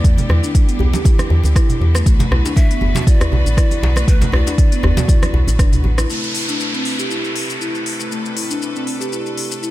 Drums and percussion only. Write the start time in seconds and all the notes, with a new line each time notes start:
0.04 kick, closed hi-hat, shaker
0.18 closed hi-hat, high conga, low conga, shaker
0.29 cross-stick, muted conga, djembe tone
0.44 shaker
0.55 kick, closed hi-hat, muted conga, shaker
0.69 closed hi-hat, shaker
0.79 muted conga, djembe tone, djembe bass
0.93 djembe slap, high conga, shaker
1.04 kick, closed hi-hat, muted conga, djembe tone, shaker
1.19 cross-stick, closed hi-hat, high conga, shaker
1.30 djembe tone
1.43 muted conga, high conga, shaker
1.56 kick, cross-stick, closed hi-hat, shaker
1.69 closed hi-hat, muted conga, low conga, shaker
1.81 djembe tone
1.95 cross-stick, muted conga, shaker
2.06 kick, closed hi-hat, shaker
2.19 closed hi-hat, djembe slap, high conga, low conga, shaker
2.32 cross-stick, muted conga, djembe tone
2.46 djembe slap, shaker
2.57 kick, closed hi-hat, muted conga, shaker
2.71 closed hi-hat, shaker
2.81 muted conga, djembe tone
2.95 djembe slap, high conga, low conga, shaker
3.07 kick, closed hi-hat, muted conga, shaker
3.21 cross-stick, closed hi-hat, djembe bass, shaker
3.32 djembe tone, low conga
3.46 muted conga, shaker
3.57 kick, cross-stick, closed hi-hat, shaker
3.71 closed hi-hat, muted conga, djembe tone, shaker
3.83 djembe slap, high conga
3.96 cross-stick, muted conga, shaker
4.08 kick, closed hi-hat, shaker
4.21 closed hi-hat, djembe slap, high conga, low conga, shaker
4.32 cross-stick, muted conga, djembe tone
4.47 closed hi-hat, djembe slap, shaker
4.58 kick, closed hi-hat, muted conga, shaker
4.72 closed hi-hat, shaker
4.83 cross-stick, muted conga, djembe tone, djembe bass
4.97 djembe slap, high conga, low conga, shaker
5.08 kick, closed hi-hat, muted conga, djembe tone, shaker
5.22 cross-stick, closed hi-hat, high conga, shaker
5.34 djembe tone
5.47 closed hi-hat, muted conga, high conga, shaker
5.59 kick, cross-stick, closed hi-hat, shaker
5.72 closed hi-hat, muted conga, low conga, shaker
5.84 djembe tone, high conga
5.98 cross-stick, closed hi-hat, muted conga, shaker
6.10 shaker
6.23 shaker
6.35 open hi-hat
6.49 shaker
6.60 shaker
6.74 shaker
6.85 open hi-hat
6.99 shaker
7.11 shaker
7.24 shaker
7.36 open hi-hat
7.50 shaker
7.61 shaker
7.75 shaker
7.86 open hi-hat
8.00 shaker
8.12 shaker
8.25 shaker
8.37 open hi-hat
8.50 shaker
8.62 shaker
8.76 shaker
8.87 open hi-hat
9.01 shaker
9.13 shaker
9.26 shaker
9.37 open hi-hat
9.51 shaker
9.63 shaker